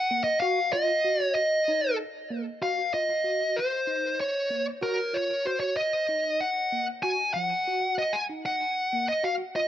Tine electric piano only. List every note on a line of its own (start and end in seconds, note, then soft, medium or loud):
0.11 0.27 A#3 medium
0.42 0.59 F#4 loud
0.73 0.90 F4 medium
1.05 1.38 F#4 medium
1.68 2.01 D#4 medium
2.30 2.47 A#3 medium
2.62 2.79 F#4 medium
2.94 3.10 F4 medium
3.24 3.58 F#4 medium
3.87 4.21 D#4 medium
4.50 4.67 A#3 medium
4.81 4.98 F#4 medium
5.13 5.30 F4 medium
5.45 5.79 F#4 medium
6.08 6.42 D#4 medium
6.72 6.89 A#3 medium
7.03 7.20 F#4 medium
7.36 7.52 F3 medium
7.67 8.00 F#4 medium
8.29 8.62 D#4 medium
8.92 9.09 A#3 medium
9.23 9.40 F#4 medium
9.56 9.68 F4 medium